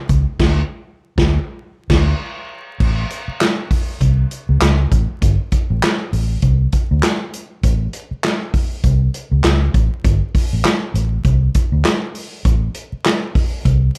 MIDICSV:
0, 0, Header, 1, 4, 480
1, 0, Start_track
1, 0, Tempo, 602410
1, 320, Time_signature, 4, 2, 24, 8
1, 11140, End_track
2, 0, Start_track
2, 0, Title_t, "Fingered electric bass"
2, 0, Program_c, 0, 33
2, 74, Note_on_c, 0, 37, 96
2, 186, Note_off_c, 0, 37, 0
2, 313, Note_on_c, 0, 38, 98
2, 488, Note_off_c, 0, 38, 0
2, 936, Note_on_c, 0, 38, 101
2, 1095, Note_off_c, 0, 38, 0
2, 1512, Note_on_c, 0, 38, 107
2, 1687, Note_off_c, 0, 38, 0
2, 2233, Note_on_c, 0, 33, 104
2, 2418, Note_off_c, 0, 33, 0
2, 3192, Note_on_c, 0, 36, 84
2, 3378, Note_off_c, 0, 36, 0
2, 3577, Note_on_c, 0, 37, 94
2, 3653, Note_off_c, 0, 37, 0
2, 3674, Note_on_c, 0, 37, 109
2, 3859, Note_off_c, 0, 37, 0
2, 3919, Note_on_c, 0, 33, 92
2, 4029, Note_off_c, 0, 33, 0
2, 4156, Note_on_c, 0, 31, 110
2, 4267, Note_off_c, 0, 31, 0
2, 4545, Note_on_c, 0, 33, 86
2, 4618, Note_off_c, 0, 33, 0
2, 4882, Note_on_c, 0, 33, 87
2, 5065, Note_off_c, 0, 33, 0
2, 5119, Note_on_c, 0, 36, 92
2, 5303, Note_off_c, 0, 36, 0
2, 5507, Note_on_c, 0, 38, 95
2, 5580, Note_off_c, 0, 38, 0
2, 6084, Note_on_c, 0, 33, 98
2, 6266, Note_off_c, 0, 33, 0
2, 7043, Note_on_c, 0, 36, 96
2, 7226, Note_off_c, 0, 36, 0
2, 7422, Note_on_c, 0, 37, 93
2, 7497, Note_off_c, 0, 37, 0
2, 7525, Note_on_c, 0, 37, 99
2, 7706, Note_off_c, 0, 37, 0
2, 7762, Note_on_c, 0, 33, 99
2, 7872, Note_off_c, 0, 33, 0
2, 8001, Note_on_c, 0, 31, 111
2, 8111, Note_off_c, 0, 31, 0
2, 8390, Note_on_c, 0, 33, 85
2, 8462, Note_off_c, 0, 33, 0
2, 8718, Note_on_c, 0, 33, 85
2, 8902, Note_off_c, 0, 33, 0
2, 8961, Note_on_c, 0, 36, 97
2, 9144, Note_off_c, 0, 36, 0
2, 9339, Note_on_c, 0, 38, 88
2, 9415, Note_off_c, 0, 38, 0
2, 9920, Note_on_c, 0, 33, 85
2, 10102, Note_off_c, 0, 33, 0
2, 10878, Note_on_c, 0, 36, 95
2, 11060, Note_off_c, 0, 36, 0
2, 11140, End_track
3, 0, Start_track
3, 0, Title_t, "Muted fingered electric bass strokes"
3, 2613, Note_on_c, 9, 29, 48
3, 2692, Note_off_c, 9, 29, 0
3, 6463, Note_on_c, 9, 29, 48
3, 6543, Note_off_c, 9, 29, 0
3, 10298, Note_on_c, 9, 29, 45
3, 10378, Note_off_c, 9, 29, 0
3, 11140, End_track
4, 0, Start_track
4, 0, Title_t, "Drums"
4, 73, Note_on_c, 9, 42, 65
4, 75, Note_on_c, 9, 36, 83
4, 152, Note_off_c, 9, 42, 0
4, 155, Note_off_c, 9, 36, 0
4, 315, Note_on_c, 9, 36, 106
4, 316, Note_on_c, 9, 49, 79
4, 318, Note_on_c, 9, 38, 98
4, 395, Note_off_c, 9, 36, 0
4, 395, Note_off_c, 9, 49, 0
4, 398, Note_off_c, 9, 38, 0
4, 938, Note_on_c, 9, 36, 118
4, 941, Note_on_c, 9, 38, 116
4, 1018, Note_off_c, 9, 36, 0
4, 1021, Note_off_c, 9, 38, 0
4, 1512, Note_on_c, 9, 49, 79
4, 1513, Note_on_c, 9, 36, 108
4, 1514, Note_on_c, 9, 38, 97
4, 1592, Note_off_c, 9, 49, 0
4, 1593, Note_off_c, 9, 36, 0
4, 1594, Note_off_c, 9, 38, 0
4, 2232, Note_on_c, 9, 49, 86
4, 2233, Note_on_c, 9, 36, 101
4, 2312, Note_off_c, 9, 36, 0
4, 2312, Note_off_c, 9, 49, 0
4, 2473, Note_on_c, 9, 42, 77
4, 2553, Note_off_c, 9, 42, 0
4, 2710, Note_on_c, 9, 42, 80
4, 2718, Note_on_c, 9, 38, 105
4, 2718, Note_on_c, 9, 39, 88
4, 2790, Note_off_c, 9, 42, 0
4, 2798, Note_off_c, 9, 38, 0
4, 2798, Note_off_c, 9, 39, 0
4, 2954, Note_on_c, 9, 36, 86
4, 2955, Note_on_c, 9, 46, 66
4, 3034, Note_off_c, 9, 36, 0
4, 3034, Note_off_c, 9, 46, 0
4, 3193, Note_on_c, 9, 42, 69
4, 3194, Note_on_c, 9, 36, 69
4, 3273, Note_off_c, 9, 42, 0
4, 3274, Note_off_c, 9, 36, 0
4, 3435, Note_on_c, 9, 42, 65
4, 3514, Note_off_c, 9, 42, 0
4, 3675, Note_on_c, 9, 42, 96
4, 3678, Note_on_c, 9, 38, 111
4, 3678, Note_on_c, 9, 39, 90
4, 3755, Note_off_c, 9, 42, 0
4, 3758, Note_off_c, 9, 38, 0
4, 3758, Note_off_c, 9, 39, 0
4, 3917, Note_on_c, 9, 36, 85
4, 3917, Note_on_c, 9, 42, 61
4, 3997, Note_off_c, 9, 36, 0
4, 3997, Note_off_c, 9, 42, 0
4, 4159, Note_on_c, 9, 36, 97
4, 4160, Note_on_c, 9, 42, 92
4, 4239, Note_off_c, 9, 36, 0
4, 4239, Note_off_c, 9, 42, 0
4, 4397, Note_on_c, 9, 42, 83
4, 4400, Note_on_c, 9, 36, 84
4, 4477, Note_off_c, 9, 42, 0
4, 4480, Note_off_c, 9, 36, 0
4, 4641, Note_on_c, 9, 42, 79
4, 4649, Note_on_c, 9, 38, 114
4, 4649, Note_on_c, 9, 39, 101
4, 4721, Note_off_c, 9, 42, 0
4, 4728, Note_off_c, 9, 38, 0
4, 4728, Note_off_c, 9, 39, 0
4, 4884, Note_on_c, 9, 46, 65
4, 4964, Note_off_c, 9, 46, 0
4, 5116, Note_on_c, 9, 42, 71
4, 5120, Note_on_c, 9, 36, 75
4, 5196, Note_off_c, 9, 42, 0
4, 5200, Note_off_c, 9, 36, 0
4, 5357, Note_on_c, 9, 42, 67
4, 5362, Note_on_c, 9, 36, 80
4, 5437, Note_off_c, 9, 42, 0
4, 5442, Note_off_c, 9, 36, 0
4, 5600, Note_on_c, 9, 42, 98
4, 5603, Note_on_c, 9, 38, 119
4, 5603, Note_on_c, 9, 39, 89
4, 5680, Note_off_c, 9, 42, 0
4, 5683, Note_off_c, 9, 38, 0
4, 5683, Note_off_c, 9, 39, 0
4, 5845, Note_on_c, 9, 42, 69
4, 5925, Note_off_c, 9, 42, 0
4, 6083, Note_on_c, 9, 42, 93
4, 6084, Note_on_c, 9, 36, 91
4, 6162, Note_off_c, 9, 42, 0
4, 6163, Note_off_c, 9, 36, 0
4, 6320, Note_on_c, 9, 42, 78
4, 6399, Note_off_c, 9, 42, 0
4, 6560, Note_on_c, 9, 42, 84
4, 6568, Note_on_c, 9, 38, 112
4, 6568, Note_on_c, 9, 39, 92
4, 6640, Note_off_c, 9, 42, 0
4, 6647, Note_off_c, 9, 38, 0
4, 6647, Note_off_c, 9, 39, 0
4, 6803, Note_on_c, 9, 36, 92
4, 6803, Note_on_c, 9, 46, 65
4, 6882, Note_off_c, 9, 46, 0
4, 6883, Note_off_c, 9, 36, 0
4, 7041, Note_on_c, 9, 42, 75
4, 7042, Note_on_c, 9, 36, 77
4, 7121, Note_off_c, 9, 36, 0
4, 7121, Note_off_c, 9, 42, 0
4, 7284, Note_on_c, 9, 42, 71
4, 7363, Note_off_c, 9, 42, 0
4, 7520, Note_on_c, 9, 42, 92
4, 7523, Note_on_c, 9, 38, 121
4, 7523, Note_on_c, 9, 39, 82
4, 7600, Note_off_c, 9, 42, 0
4, 7603, Note_off_c, 9, 38, 0
4, 7603, Note_off_c, 9, 39, 0
4, 7763, Note_on_c, 9, 36, 84
4, 7763, Note_on_c, 9, 42, 71
4, 7842, Note_off_c, 9, 36, 0
4, 7843, Note_off_c, 9, 42, 0
4, 8004, Note_on_c, 9, 36, 101
4, 8004, Note_on_c, 9, 42, 84
4, 8083, Note_off_c, 9, 36, 0
4, 8083, Note_off_c, 9, 42, 0
4, 8244, Note_on_c, 9, 36, 97
4, 8245, Note_on_c, 9, 46, 85
4, 8324, Note_off_c, 9, 36, 0
4, 8324, Note_off_c, 9, 46, 0
4, 8479, Note_on_c, 9, 42, 80
4, 8486, Note_on_c, 9, 38, 106
4, 8486, Note_on_c, 9, 39, 94
4, 8558, Note_off_c, 9, 42, 0
4, 8566, Note_off_c, 9, 38, 0
4, 8566, Note_off_c, 9, 39, 0
4, 8727, Note_on_c, 9, 42, 68
4, 8807, Note_off_c, 9, 42, 0
4, 8961, Note_on_c, 9, 42, 64
4, 8962, Note_on_c, 9, 36, 84
4, 9040, Note_off_c, 9, 42, 0
4, 9042, Note_off_c, 9, 36, 0
4, 9199, Note_on_c, 9, 42, 68
4, 9203, Note_on_c, 9, 36, 92
4, 9278, Note_off_c, 9, 42, 0
4, 9283, Note_off_c, 9, 36, 0
4, 9439, Note_on_c, 9, 42, 87
4, 9441, Note_on_c, 9, 38, 116
4, 9441, Note_on_c, 9, 39, 85
4, 9518, Note_off_c, 9, 42, 0
4, 9521, Note_off_c, 9, 38, 0
4, 9521, Note_off_c, 9, 39, 0
4, 9679, Note_on_c, 9, 46, 64
4, 9759, Note_off_c, 9, 46, 0
4, 9920, Note_on_c, 9, 42, 79
4, 9921, Note_on_c, 9, 36, 105
4, 9999, Note_off_c, 9, 42, 0
4, 10001, Note_off_c, 9, 36, 0
4, 10155, Note_on_c, 9, 42, 74
4, 10235, Note_off_c, 9, 42, 0
4, 10396, Note_on_c, 9, 42, 88
4, 10403, Note_on_c, 9, 38, 112
4, 10403, Note_on_c, 9, 39, 84
4, 10476, Note_off_c, 9, 42, 0
4, 10483, Note_off_c, 9, 38, 0
4, 10483, Note_off_c, 9, 39, 0
4, 10639, Note_on_c, 9, 36, 100
4, 10640, Note_on_c, 9, 46, 70
4, 10719, Note_off_c, 9, 36, 0
4, 10720, Note_off_c, 9, 46, 0
4, 10878, Note_on_c, 9, 36, 74
4, 10879, Note_on_c, 9, 42, 75
4, 10958, Note_off_c, 9, 36, 0
4, 10959, Note_off_c, 9, 42, 0
4, 11115, Note_on_c, 9, 42, 64
4, 11140, Note_off_c, 9, 42, 0
4, 11140, End_track
0, 0, End_of_file